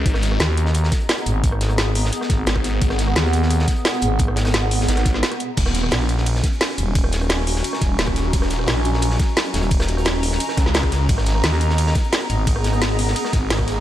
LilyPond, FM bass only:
\new Staff \with { instrumentName = "FM bass" } { \clef bass \time 4/4 \key aes \dorian \tempo 4 = 174 r4 ees,4. r4 aes,,8~ | aes,,2 r8 aes,,8 r4 | r4 ees,4. r4 aes,,8~ | aes,,2 r2 |
r4 bes,,4. r4 ees,,8~ | ees,,2 r8 ees,,8 r4 | r4 bes,,4. r4 ees,,8~ | ees,,2 r2 |
r4 ees,4. r4 aes,,8~ | aes,,2 r8 aes,,8 r4 | }